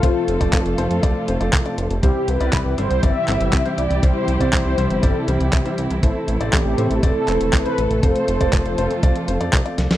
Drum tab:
HH |x-xxxxxxx-xxxxxx|x-xxx-xxx-xxxxxx|x-xxx-xxx-xxxxxx|x-xxx-xxx-xxxxxx|
CP |----x-------x---|----x-----x-x---|----x-------x---|----x-----x-x---|
SD |----------------|----------------|----------------|----------------|
BD |o--oo---o---o---|o---o---o---o---|o--oo---o---o---|o---o---o---o---|

HH |xxxxxxxxxxxxxxxx|
CP |----x-------x---|
SD |--------------oo|
BD |o--oo---o---o---|